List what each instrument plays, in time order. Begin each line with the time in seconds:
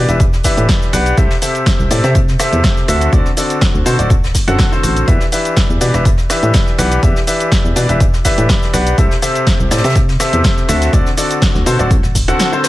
0.09 fm bass E1, grand piano E3 D4 G4 B4 E5, closed hi-hat, cabasa
0.20 kick, closed hi-hat, cabasa
0.33 snare, cabasa
0.43 grand piano E3 D4 G4 B4 E5, kick, snare, closed hi-hat, open hi-hat, cabasa
0.57 fm bass A2, closed hi-hat, cabasa
0.69 kick, snare, closed hi-hat, cabasa
0.82 snare, cabasa
0.93 fm bass B1, grand piano D4 G4 B4 F#5, cross-stick, closed hi-hat, open hi-hat, cabasa
1.06 closed hi-hat, cabasa
1.18 fm bass C2, grand piano C3 C4 A4 E5, kick, closed hi-hat, cabasa
1.31 snare, cabasa
1.42 grand piano C3 C4 G4 A4 E5, closed hi-hat, open hi-hat, cabasa
1.55 closed hi-hat, cabasa
1.66 kick, snare, closed hi-hat, cabasa
1.79 fm bass C2, cabasa
1.90 fm bass A2, grand piano C3 C4 G4 A4 D5, closed hi-hat, open hi-hat, cabasa
2.03 grand piano C3 C4 G4 A4 E5, fm bass C3, cross-stick, snare, closed hi-hat, cabasa
2.15 kick, closed hi-hat, cabasa
2.28 snare, cabasa
2.39 grand piano C3 C4 G4 A4 E5, cross-stick, snare, closed hi-hat, open hi-hat, cabasa
2.53 fm bass E2, closed hi-hat, cabasa
2.64 kick, snare, closed hi-hat, cabasa
2.77 snare, cabasa
2.88 fm bass D2, grand piano D3 C4 F#4 A4 E5, cross-stick, closed hi-hat, open hi-hat, cabasa
3.01 closed hi-hat, cabasa
3.12 fm bass D2, grand piano D3 C4 F#4 D5, kick, closed hi-hat, cabasa
3.26 snare, cabasa
3.37 grand piano D3 C4 F#4 A4 D5, closed hi-hat, open hi-hat, cabasa
3.50 closed hi-hat, cabasa
3.61 kick, snare, closed hi-hat, cabasa
3.75 fm bass D2, cabasa
3.86 fm bass B2, grand piano D3 C4 F#4 A4 C5, closed hi-hat, open hi-hat, cabasa
3.99 fm bass D1, grand piano D3 C4 F#4 A4 D5, closed hi-hat, cabasa
4.10 kick, closed hi-hat, cabasa
4.24 snare, cabasa
4.35 kick, snare, closed hi-hat, open hi-hat, cabasa
4.48 fm bass F#2, grand piano D3 C4 F#4 A4 F#5, closed hi-hat, cabasa
4.58 kick, snare, closed hi-hat, cabasa
4.72 grand piano D3 C4 F#4 A4 C5, snare, cabasa
4.83 fm bass A1, cross-stick, closed hi-hat, open hi-hat, cabasa
4.96 closed hi-hat, cabasa
5.08 fm bass E2, grand piano E3 D4 G4 B4 E5, kick, closed hi-hat, cabasa
5.20 snare, cabasa
5.32 grand piano E3 D4 G4 B4 E5, closed hi-hat, open hi-hat, cabasa
5.45 closed hi-hat, cabasa
5.56 kick, snare, closed hi-hat, cabasa
5.70 fm bass E2, cabasa
5.81 fm bass B2, grand piano E3 D4 G4 B4 D5, closed hi-hat, open hi-hat, cabasa
5.94 fm bass E1, grand piano E3 D4 G4 B4 E5, cross-stick, snare, closed hi-hat, cabasa
6.05 kick, closed hi-hat, cabasa
6.18 snare, cabasa
6.30 grand piano E3 D4 G4 B4 E5, cross-stick, snare, closed hi-hat, open hi-hat, cabasa
6.43 fm bass A2, closed hi-hat, cabasa
6.53 kick, snare, closed hi-hat, cabasa
6.67 snare, cabasa
6.78 fm bass B1, grand piano E3 D4 G4 B4 F#5, cross-stick, closed hi-hat, open hi-hat, cabasa
6.92 closed hi-hat, cabasa
7.03 fm bass E2, grand piano E3 G4 B4 E5, kick, closed hi-hat, cabasa
7.16 snare, cabasa
7.27 grand piano E3 D4 G4 B4 E5, closed hi-hat, open hi-hat, cabasa
7.40 closed hi-hat, cabasa
7.52 kick, snare, closed hi-hat, cabasa
7.65 fm bass E2, cabasa
7.76 fm bass B2, grand piano E3 D4 G4 B4 D5, closed hi-hat, open hi-hat, cabasa
7.89 fm bass E1, grand piano E3 D4 G4 B4 E5, closed hi-hat, cabasa
8.00 kick, closed hi-hat, cabasa
8.14 snare, cabasa
8.25 grand piano E3 D4 G4 B4 E5, kick, snare, closed hi-hat, open hi-hat, cabasa
8.37 fm bass A2, closed hi-hat, cabasa
8.49 kick, snare, closed hi-hat, cabasa
8.63 snare, cabasa
8.73 fm bass B1, grand piano D4 G4 B4 F#5, cross-stick, closed hi-hat, open hi-hat, cabasa
8.87 closed hi-hat, cabasa
8.98 fm bass C2, grand piano C3 C4 G4 A4 E5, kick, closed hi-hat, cabasa
9.11 snare, cabasa
9.22 grand piano C3 C4 G4 A4 E5, closed hi-hat, open hi-hat, cabasa
9.35 closed hi-hat, cabasa
9.47 kick, snare, closed hi-hat, cabasa
9.60 fm bass C2, cabasa
9.71 fm bass A2, grand piano C3 C4 G4 A4 D5, snare, closed hi-hat, open hi-hat, cabasa
9.78 snare, closed hi-hat
9.84 grand piano C3 C4 G4 A4 E5, fm bass C3, cross-stick, snare, closed hi-hat, cabasa
9.90 snare, closed hi-hat
9.95 kick, closed hi-hat, cabasa
10.09 snare, cabasa
10.19 grand piano C3 C4 G4 A4 E5, cross-stick, snare, closed hi-hat, open hi-hat, cabasa
10.33 fm bass E2, closed hi-hat, cabasa
10.44 kick, snare, closed hi-hat, cabasa
10.57 snare, cabasa
10.68 fm bass D2, grand piano D3 C4 F#4 A4 E5, cross-stick, closed hi-hat, open hi-hat, cabasa
10.82 snare, closed hi-hat, cabasa
10.93 fm bass D2, grand piano D3 C4 F#4 A4 D5, kick, closed hi-hat, cabasa
11.06 snare, cabasa
11.17 grand piano D3 C4 F#4 A4 D5, closed hi-hat, open hi-hat, cabasa
11.31 closed hi-hat, cabasa
11.42 kick, snare, closed hi-hat, cabasa
11.55 fm bass D2, snare, cabasa
11.66 fm bass B2, grand piano D3 C4 F#4 A4 C5, closed hi-hat, open hi-hat, cabasa
11.79 fm bass D1, grand piano D3 C4 F#4 A4 D5, cross-stick, closed hi-hat, cabasa
11.91 fm bass C2, kick, closed hi-hat, cabasa
12.03 fm bass D1, snare, cabasa
12.15 kick, closed hi-hat, open hi-hat, cabasa
12.28 grand piano D3 C4 F#4 A4 F#5, closed hi-hat, cabasa
12.39 snare, closed hi-hat, cabasa
12.52 grand piano D3 C4 F#4 A4 C5, cabasa
12.64 cross-stick, snare, closed hi-hat, open hi-hat, cabasa